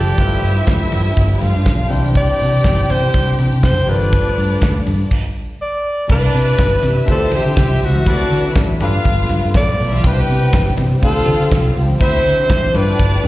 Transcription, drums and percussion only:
0.07 high conga medium
0.18 kick loud
0.18 closed hi-hat medium
0.43 open hi-hat medium
0.67 kick loud
0.67 snare loud
0.67 closed hi-hat medium
0.67 high conga medium
0.92 open hi-hat medium
0.92 muted conga medium
1.16 kick loud
1.16 closed hi-hat medium
1.16 muted conga soft
1.41 open hi-hat medium
1.41 muted conga medium
1.66 kick loud
1.66 snare medium
1.66 closed hi-hat medium
1.66 high conga medium
1.90 open hi-hat medium
1.90 high conga medium
2.05 high conga medium
2.15 kick loud
2.15 closed hi-hat medium
2.40 open hi-hat medium
2.64 kick loud
2.64 snare loud
2.64 closed hi-hat medium
2.64 high conga medium
2.89 open hi-hat medium
2.89 muted conga medium
3.14 kick loud
3.14 closed hi-hat medium
3.14 muted conga soft
3.39 open hi-hat medium
3.39 muted conga medium
3.63 kick loud
3.63 snare loud
3.63 closed hi-hat medium
3.63 high conga medium
3.87 open hi-hat medium
3.87 high conga medium
4.02 high conga medium
4.13 kick loud
4.13 closed hi-hat medium
4.38 open hi-hat medium
4.62 kick loud
4.62 snare loud
4.62 closed hi-hat medium
4.62 high conga medium
4.86 open hi-hat medium
4.86 muted conga medium
5.11 kick loud
5.11 crash medium
6.10 kick loud
6.10 crash medium
6.35 open hi-hat medium
6.58 kick loud
6.58 snare loud
6.58 closed hi-hat medium
6.58 high conga medium
6.83 open hi-hat medium
6.83 muted conga medium
7.07 kick loud
7.07 closed hi-hat medium
7.07 muted conga soft
7.32 open hi-hat medium
7.32 muted conga medium
7.56 kick loud
7.56 snare loud
7.56 closed hi-hat medium
7.56 high conga medium
7.83 open hi-hat medium
7.96 high conga medium
8.06 kick loud
8.06 closed hi-hat medium
8.32 open hi-hat medium
8.55 kick loud
8.55 snare loud
8.55 closed hi-hat medium
8.55 high conga medium
8.80 open hi-hat medium
8.80 muted conga medium
9.04 kick loud
9.04 closed hi-hat medium
9.04 muted conga soft
9.29 open hi-hat medium
9.29 muted conga medium
9.29 low conga medium
9.54 kick loud
9.54 snare loud
9.54 closed hi-hat medium
9.54 high conga medium
9.80 open hi-hat medium
9.93 high conga medium
10.04 kick loud
10.04 closed hi-hat medium
10.29 open hi-hat medium
10.53 kick loud
10.53 snare loud
10.53 closed hi-hat medium
10.53 high conga medium
10.78 open hi-hat medium
10.78 muted conga medium
11.03 kick loud
11.03 closed hi-hat medium
11.26 open hi-hat medium
11.26 muted conga medium
11.51 kick loud
11.51 snare loud
11.51 closed hi-hat medium
11.51 high conga medium
11.77 open hi-hat medium
11.90 high conga medium
12.01 kick loud
12.01 closed hi-hat medium
12.26 open hi-hat medium
12.50 kick loud
12.50 snare loud
12.50 closed hi-hat medium
12.50 high conga medium
12.74 open hi-hat medium
12.74 muted conga medium
12.99 kick loud
12.99 closed hi-hat medium
12.99 muted conga soft
13.24 open hi-hat medium
13.24 muted conga medium
13.24 low conga medium

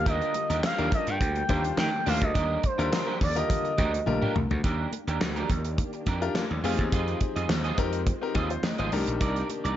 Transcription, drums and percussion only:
0.06 kick loud
0.06 closed hi-hat loud
0.22 closed hi-hat soft
0.34 closed hi-hat medium
0.34 muted conga soft
0.50 closed hi-hat medium
0.63 snare loud
0.63 clap loud
0.63 high conga medium
0.78 closed hi-hat soft
0.92 kick medium
0.92 closed hi-hat medium
1.07 closed hi-hat medium
1.21 kick loud
1.21 closed hi-hat loud
1.21 muted conga medium
1.35 closed hi-hat soft
1.49 kick loud
1.49 closed hi-hat medium
1.49 muted conga medium
1.49 low conga medium
1.64 closed hi-hat medium
1.77 snare loud
1.77 clap medium
1.77 high conga medium
2.06 open hi-hat medium
2.06 high conga medium
2.22 kick medium
2.22 closed hi-hat medium
2.35 kick loud
2.35 closed hi-hat loud
2.63 kick loud
2.63 closed hi-hat medium
2.63 muted conga soft
2.80 closed hi-hat soft
2.92 snare loud
2.92 clap loud
2.92 high conga medium
3.21 kick medium
3.21 open hi-hat medium
3.36 closed hi-hat medium
3.50 kick loud
3.50 closed hi-hat loud
3.50 muted conga medium
3.50 low conga medium
3.65 closed hi-hat soft
3.78 kick loud
3.78 closed hi-hat medium
3.78 muted conga medium
3.78 low conga medium
3.94 closed hi-hat medium
4.06 high tom medium
4.06 high conga medium
4.22 mid tom medium
4.36 mid tom loud
4.36 high conga medium
4.50 floor tom medium
4.50 high conga soft
4.64 kick loud
4.64 closed hi-hat loud
4.92 closed hi-hat medium
4.92 muted conga soft
5.08 closed hi-hat soft
5.21 snare loud
5.21 clap loud
5.21 high conga medium
5.36 closed hi-hat soft
5.50 kick medium
5.50 closed hi-hat medium
5.65 closed hi-hat medium
5.78 kick loud
5.78 closed hi-hat loud
5.78 muted conga medium
5.93 closed hi-hat soft
6.06 kick medium
6.06 closed hi-hat medium
6.06 muted conga medium
6.22 closed hi-hat medium
6.35 snare loud
6.35 clap medium
6.35 high conga medium
6.64 open hi-hat medium
6.64 high conga medium
6.79 kick medium
6.79 closed hi-hat soft
6.92 kick loud
6.92 closed hi-hat loud
7.08 closed hi-hat soft
7.21 kick medium
7.21 closed hi-hat medium
7.21 muted conga soft
7.36 closed hi-hat soft
7.49 snare loud
7.49 clap loud
7.49 high conga medium
7.64 closed hi-hat soft
7.78 kick medium
7.78 closed hi-hat medium
7.93 closed hi-hat medium
8.07 kick loud
8.07 closed hi-hat loud
8.07 muted conga medium
8.35 kick medium
8.35 closed hi-hat medium
8.35 muted conga medium
8.35 low conga medium
8.50 closed hi-hat medium
8.63 snare loud
8.63 clap medium
8.63 high conga medium
8.78 closed hi-hat soft
8.92 open hi-hat medium
8.92 high conga medium
9.07 closed hi-hat soft
9.21 kick loud
9.21 closed hi-hat loud
9.36 closed hi-hat soft
9.49 closed hi-hat medium
9.49 muted conga soft
9.65 closed hi-hat soft

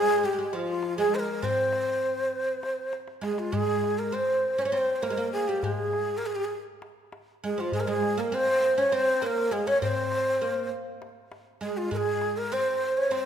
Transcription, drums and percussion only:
0.23 darbuka ka soft
0.53 darbuka tek medium
0.83 darbuka tek medium
1.13 darbuka ka soft
1.43 darbuka dum medium
1.72 darbuka tek medium
2.03 darbuka ka soft
2.33 darbuka ka soft
2.63 darbuka tek medium
2.93 darbuka tek medium
3.08 darbuka ka medium
3.23 darbuka tek medium
3.38 darbuka ka medium
3.53 darbuka dum medium
3.84 darbuka tek medium
4.14 darbuka ka soft
4.44 darbuka ka soft
4.74 darbuka tek medium
5.03 darbuka tek medium
5.63 darbuka dum medium
5.93 darbuka tek medium
6.23 darbuka ka soft
6.53 darbuka ka soft
6.82 darbuka tek medium
7.12 darbuka tek medium
7.72 darbuka dum medium
8.02 darbuka tek medium
8.32 darbuka ka soft
8.62 darbuka ka soft
8.92 darbuka tek medium
9.22 darbuka tek medium
9.82 darbuka dum medium
10.12 darbuka tek medium
10.72 darbuka ka soft
11.02 darbuka tek medium
11.32 darbuka tek medium
11.62 darbuka ka soft
11.92 darbuka dum medium
12.21 darbuka tek medium
12.51 darbuka ka soft
12.81 darbuka ka soft
13.11 darbuka tek medium

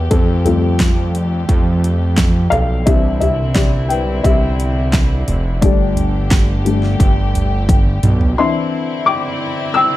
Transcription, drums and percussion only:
0.11 kick medium
0.11 closed hi-hat medium
0.45 closed hi-hat medium
0.45 floor tom medium
0.80 kick loud
0.80 snare loud
0.80 clap medium
0.80 closed hi-hat medium
1.15 closed hi-hat medium
1.49 kick medium
1.49 closed hi-hat medium
1.84 closed hi-hat medium
2.18 kick loud
2.18 snare loud
2.18 clap medium
2.18 closed hi-hat medium
2.52 closed hi-hat medium
2.52 floor tom medium
2.87 kick loud
2.87 closed hi-hat medium
3.21 closed hi-hat medium
3.21 floor tom medium
3.56 kick loud
3.56 snare loud
3.56 clap medium
3.56 closed hi-hat medium
3.90 closed hi-hat medium
4.24 kick medium
4.24 closed hi-hat medium
4.60 closed hi-hat medium
4.93 kick medium
4.93 snare loud
4.93 clap medium
4.93 closed hi-hat medium
5.28 closed hi-hat medium
5.28 floor tom medium
5.62 kick loud
5.62 closed hi-hat medium
5.97 closed hi-hat medium
5.97 floor tom medium
6.31 kick loud
6.31 snare loud
6.31 clap medium
6.31 closed hi-hat medium
6.66 closed hi-hat medium
6.83 snare soft
7.00 kick medium
7.00 closed hi-hat medium
7.35 closed hi-hat medium
7.35 floor tom medium
7.69 kick medium
7.69 closed hi-hat medium
7.69 high tom medium
8.03 closed hi-hat medium
8.03 mid tom medium
8.21 floor tom medium

